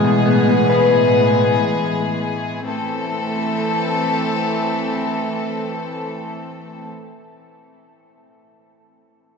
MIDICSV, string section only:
0, 0, Header, 1, 2, 480
1, 0, Start_track
1, 0, Key_signature, 0, "minor"
1, 0, Tempo, 500000
1, 9002, End_track
2, 0, Start_track
2, 0, Title_t, "String section"
2, 0, Program_c, 0, 48
2, 0, Note_on_c, 0, 45, 81
2, 0, Note_on_c, 0, 52, 72
2, 0, Note_on_c, 0, 56, 74
2, 0, Note_on_c, 0, 59, 74
2, 0, Note_on_c, 0, 68, 87
2, 2508, Note_off_c, 0, 45, 0
2, 2508, Note_off_c, 0, 52, 0
2, 2508, Note_off_c, 0, 56, 0
2, 2508, Note_off_c, 0, 59, 0
2, 2508, Note_off_c, 0, 68, 0
2, 2543, Note_on_c, 0, 57, 72
2, 2543, Note_on_c, 0, 69, 86
2, 2544, Note_on_c, 0, 52, 76
2, 2544, Note_on_c, 0, 60, 69
2, 6611, Note_off_c, 0, 52, 0
2, 6611, Note_off_c, 0, 57, 0
2, 6611, Note_off_c, 0, 60, 0
2, 6611, Note_off_c, 0, 69, 0
2, 9002, End_track
0, 0, End_of_file